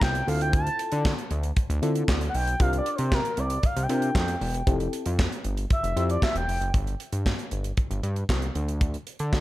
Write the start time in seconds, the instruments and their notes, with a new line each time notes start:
0.02 analog synth bass C2, analog synth lead G5, kick, snare, clap
0.15 closed hi-hat
0.27 analog synth bass D2, fm electric piano C4 E4 F4 A4, analog synth lead F5, open hi-hat
0.41 analog synth lead G5, closed hi-hat
0.53 analog synth lead A5, kick, closed hi-hat
0.67 closed hi-hat
0.79 closed hi-hat
0.92 analog synth bass D3, closed hi-hat
1.05 kick, snare, clap
1.18 closed hi-hat
1.31 analog synth bass D2, closed hi-hat
1.43 closed hi-hat
1.56 kick, closed hi-hat
1.70 analog synth bass D2, closed hi-hat
1.82 analog synth bass D3, fm electric piano C4 E4 F4 A4, closed hi-hat
1.95 closed hi-hat
2.08 analog synth bass D2, kick, snare, clap
2.21 closed hi-hat
2.29 analog synth lead F#5
2.34 analog synth bass B1, analog synth lead G5, open hi-hat
2.47 closed hi-hat
2.60 analog synth bass C2, fm electric piano D4 F4 G4 A#4, analog synth lead F5, kick, closed hi-hat
2.73 closed hi-hat
2.78 analog synth lead D5
2.86 closed hi-hat
2.91 analog synth lead D5
2.96 analog synth bass C3, analog synth lead C5, closed hi-hat
3.12 analog synth lead A#4, kick, snare, clap
3.25 closed hi-hat
3.37 analog synth bass C2, analog synth lead D5, closed hi-hat
3.50 closed hi-hat
3.63 analog synth lead F5, kick, closed hi-hat
3.77 analog synth bass C2, closed hi-hat
3.83 analog synth lead G5
3.89 analog synth bass C3, fm electric piano D4 F4 G4 A#4, closed hi-hat
4.02 closed hi-hat
4.15 analog synth bass F2, kick, snare, clap
4.28 closed hi-hat
4.41 analog synth bass E1, open hi-hat
4.54 closed hi-hat
4.67 analog synth bass F1, fm electric piano C4 E4 G4 A4, kick, closed hi-hat
4.80 closed hi-hat
4.93 closed hi-hat
5.06 analog synth bass F2, closed hi-hat
5.19 kick, snare, clap
5.32 closed hi-hat
5.44 analog synth bass G1, closed hi-hat
5.57 closed hi-hat
5.70 analog synth lead E5, kick, closed hi-hat
5.83 analog synth bass F1, closed hi-hat
5.96 analog synth bass F2, fm electric piano C4 E4 G4 C5, analog synth lead E5, closed hi-hat
6.10 analog synth lead D5, closed hi-hat
6.22 analog synth lead E5, kick, snare, clap
6.35 analog synth bass E1, analog synth lead G5, closed hi-hat
6.48 analog synth bass F1, open hi-hat
6.61 analog synth bass F#1, closed hi-hat
6.74 analog synth bass G1, kick, closed hi-hat
6.87 closed hi-hat
7.00 closed hi-hat
7.13 analog synth bass G2, closed hi-hat
7.26 kick, snare, clap
7.39 closed hi-hat
7.51 analog synth bass G1, closed hi-hat
7.64 closed hi-hat
7.77 kick, closed hi-hat
7.90 analog synth bass G1, closed hi-hat
8.03 analog synth bass G2, closed hi-hat
8.16 closed hi-hat
8.29 analog synth bass C2, kick, snare, clap
8.42 closed hi-hat
8.55 analog synth bass D2, closed hi-hat
8.68 closed hi-hat
8.81 kick, closed hi-hat
8.94 closed hi-hat
9.07 closed hi-hat
9.19 analog synth bass D3, closed hi-hat
9.33 kick, snare, clap